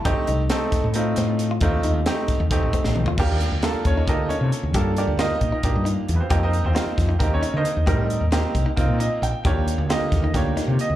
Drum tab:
CC |--------------|--------------|x-------------|--------------|
HH |x-x-x-x-x-x-x-|x-x-x-x-x-x---|--x-x-x-x-x-x-|x-x-x-x-x-x-x-|
SD |----o-o---o---|----o-o----o--|--o-o---------|----o---------|
T2 |--------------|------------o-|--------------|--------------|
FT |--------------|-------------o|--------------|--------------|
BD |o-----o-------|o-----o-o-o---|o-----o-o-----|o-----o-o-----|

CC |--------------|--------------|--------------|
HH |x-x-x-x-x-x-x-|x-x-x-x-x-x-x-|x-x-x-x-x-x-x-|
SD |----o-o-------|----o---------|----o-o-o-o---|
T2 |--------------|--------------|--------------|
FT |--------------|--------------|--------------|
BD |o-----o-o-----|o-----o-o-----|o-----o-o-----|